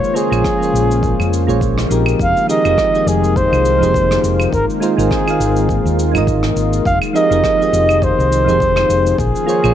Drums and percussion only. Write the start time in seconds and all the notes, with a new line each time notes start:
0.04 cabasa
0.16 cabasa
0.33 cabasa, claves
0.44 kick, cross-stick, cabasa
0.63 cabasa
0.76 cabasa
0.91 cabasa
1.03 kick, cabasa
1.20 cabasa, claves
1.33 cabasa
1.49 cabasa
1.61 kick, cabasa
1.78 cross-stick, cabasa
1.91 cabasa
2.06 cabasa, claves
2.19 kick, cabasa
2.37 cabasa
2.50 cabasa
2.65 cabasa, claves
2.78 kick, cross-stick, cabasa
2.95 cabasa
3.07 cabasa
3.24 cabasa
3.36 kick, cabasa
3.53 cabasa, claves
3.65 cabasa
3.83 cabasa
3.94 kick, cabasa
4.11 cross-stick, cabasa
4.24 cabasa
4.40 cabasa, claves
4.53 kick, cabasa
4.70 cabasa
4.82 cabasa
4.99 cabasa
5.11 kick, cross-stick, cabasa
5.28 cabasa, claves
5.41 cabasa
5.56 cabasa
5.69 kick, cabasa
5.86 cabasa
5.99 cabasa
6.15 cabasa, claves
6.27 kick, cabasa
6.43 cross-stick, cabasa
6.56 cabasa
6.73 cabasa
6.85 kick, cabasa
7.02 cabasa, claves
7.16 cabasa
7.32 cabasa
7.44 kick, cross-stick, cabasa
7.62 cabasa
7.74 cabasa
7.89 cabasa, claves
8.02 kick, cabasa
8.20 cabasa
8.32 cabasa
8.49 cabasa
8.60 kick, cabasa
8.76 cross-stick, cabasa, claves
8.90 cabasa
9.06 cabasa
9.18 kick, cabasa
9.35 cabasa
9.49 cabasa
9.64 cabasa, claves